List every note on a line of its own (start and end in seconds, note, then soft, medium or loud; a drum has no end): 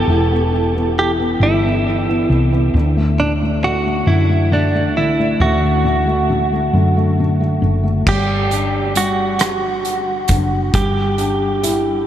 0.00 0.10 E3 medium
0.00 0.32 B3 soft
0.00 0.99 A4 medium
0.07 1.37 E1 medium
0.07 0.52 E3 medium
0.32 0.74 B3 soft
0.53 0.97 E3 soft
0.75 1.18 B3 soft
0.98 1.40 E3 soft
0.98 1.11 G4 medium
1.19 1.62 B3 soft
1.40 2.25 G1 medium
1.40 1.84 E3 medium
1.40 2.38 E4 medium
1.64 2.07 B3 soft
1.86 2.28 E3 soft
2.09 2.51 B3 soft
2.29 2.72 C2 medium
2.29 2.73 E3 soft
2.52 2.74 B3 soft
2.74 4.03 D2 medium
2.74 3.18 D3 medium
2.97 3.40 A3 soft
3.20 3.62 D3 soft
3.20 3.32 D4 medium
3.42 3.84 A3 soft
3.64 4.05 D3 soft
3.64 4.09 F#4 medium
3.86 4.28 A3 soft
4.07 4.95 F#2 medium
4.07 4.50 D3 medium
4.07 4.53 E4 medium
4.29 4.73 A3 soft
4.51 4.96 D3 soft
4.51 4.97 D4 medium
4.75 5.18 A3 soft
4.95 5.37 C2 medium
4.95 5.40 D3 soft
4.95 5.42 E4 medium
5.19 5.61 A3 soft
5.40 6.69 D2 medium
5.40 5.83 D3 medium
5.40 7.59 F#4 medium
5.63 6.05 A3 soft
5.84 6.28 D3 soft
6.06 6.51 A3 soft
6.30 6.73 D3 soft
6.53 6.95 A3 soft
6.73 7.58 F#2 medium
6.73 7.18 D3 medium
6.97 7.39 A3 soft
7.20 7.60 D3 soft
7.40 7.82 A3 soft
7.62 8.04 F#1 medium
7.62 8.05 D3 soft
7.83 8.06 A3 soft
8.06 10.25 G1 medium
8.06 8.94 G3 medium
8.06 8.97 G4 medium
8.06 kick medium
8.06 crash medium
8.50 10.25 D4 soft
8.50 closed hi-hat soft
8.95 10.70 G3 soft
8.95 10.75 F#4 medium
8.95 closed hi-hat medium
9.39 cross-stick medium
9.39 closed hi-hat medium
9.85 closed hi-hat soft
10.28 10.71 F#1 medium
10.28 10.72 D4 soft
10.28 kick medium
10.28 closed hi-hat medium
10.73 12.07 G1 medium
10.73 12.07 G3 medium
10.73 12.07 G4 medium
10.73 kick loud
10.73 closed hi-hat medium
11.18 12.07 D4 soft
11.18 closed hi-hat soft
11.63 12.07 E4 medium
11.63 closed hi-hat medium